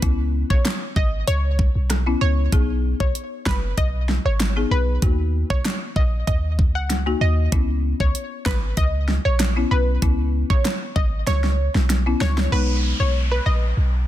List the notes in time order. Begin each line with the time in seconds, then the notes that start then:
0.02 C#2 B3 C#4 E4, kick, closed hi-hat
0.50 A#1 C#5, kick
0.65 cross-stick, snare, clap, closed hi-hat
0.96 G#1 D#5, kick
1.27 C#2 C#5, closed hi-hat
1.59 kick
1.75 B1
1.90 cross-stick, snare, closed hi-hat
2.06 B3 C#4 E4
2.21 C#2 C#5
2.52 B1 B3 D#4 G#4, kick, closed hi-hat
3.00 B1 C#5, kick
3.15 closed hi-hat
3.46 F#1 B4, kick, snare, clap
3.78 B1 D#5, kick, closed hi-hat
4.09 snare
4.25 G#1 C#5
4.40 snare, clap, closed hi-hat
4.56 B3 D#4 G#4
4.71 B1 B4
5.02 D#2 A#3 D#4 F#4, kick, closed hi-hat
5.50 B1 C#5, kick
5.65 snare, clap, closed hi-hat
5.96 A#1 D#5, kick
6.27 D#2 D#5, kick, closed hi-hat
6.59 kick
6.75 C#2 F#5
6.90 snare, closed hi-hat
7.06 A#3 D#4 F#4
7.21 D#2 D#5
7.52 C#2 B3 C#4 E4, kick, closed hi-hat
8.00 C#2 C#5, kick
8.15 closed hi-hat
8.46 G#1 B4, kick, snare, clap
8.77 C#2 D#5, kick, closed hi-hat
9.08 snare
9.25 A#1 C#5
9.40 snare, clap, closed hi-hat
9.56 B3 C#4 E4
9.71 B1 B4
10.02 C#2 B3 C#4 E4, kick, closed hi-hat
10.50 A#1 C#5, kick
10.65 cross-stick, snare, clap, closed hi-hat
10.96 G#1 D#5, kick
11.27 C#2 C#5, snare, closed hi-hat
11.44 snare
11.75 B1, snare
11.90 snare, closed hi-hat
12.06 B3 C#4 E4
12.21 C#2 C#5, snare
12.38 snare
12.52 B1 G#3 B3 D#4 B4, downlifter
13.00 B1 C#5
13.32 B4
13.46 A#1 D#5
13.77 B1